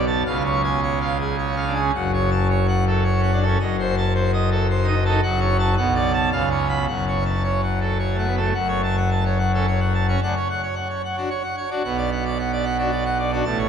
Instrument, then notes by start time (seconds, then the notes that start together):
pipe organ
Already playing: B1 B2
0.07 A5
0.26 C#2 C#3 F5
0.45 C#5
0.64 G#5
0.83 C#5
1.01 F5
1.20 G#4
1.38 C#5
1.52 C#4
1.57 F5
1.67 D4
1.75 G#4
1.80 C#4
1.95 F#1 F#2 F#5
2.14 C#5
2.31 A5
2.50 C#5
2.68 F#5
2.87 A4
3.04 C#5
3.19 C#4
3.23 F#5
3.32 D4
3.42 A4
3.47 C#4
3.60 F#1 F#2 D#5
3.79 C5
3.97 A5
4.15 C5
4.33 D#5
4.51 A4
4.71 C5
4.83 D#4
4.88 D#5
5.05 D#4 A4
5.23 F#1 F#2 F#5
5.40 C#5
5.59 A5
5.77 B1 B2 F#5
5.95 D5
6.14 A5
6.32 C#2 C#3 F5
6.51 C#5
6.69 B5
6.88 F#1 F#2 F#5
7.07 C#5
7.26 A5
7.44 C#5
7.62 F#5
7.81 A4
7.99 C#5
8.14 A3
8.18 F#5
8.26 B3
8.37 A3 A4
8.54 F#1 F#2 F#5
8.68 C#5
8.83 A5
8.97 F#5
9.12 A5
9.25 C#5
9.39 F#5
9.54 C#4 A4
9.67 C#5
9.80 F#5
9.94 A5
10.08 C#4 C#5
10.23 D2 D3 F#5
10.36 C#5
10.50 F#5
10.62 C#5
10.75 F#5
10.90 C#5
11.04 F#5
11.17 D4 F#4
11.30 C#5
11.43 F#5
11.57 C#5
11.70 D4 F#4
11.84 B1 B2 F#5
11.97 D5
12.12 F#5
12.25 D5
12.39 F#5
12.53 D5
12.64 F#5
12.78 D4 F#4
12.91 D5
13.05 F#5
13.19 D5
13.32 D4 F#4
13.45 A1 A2 A5
13.58 C#5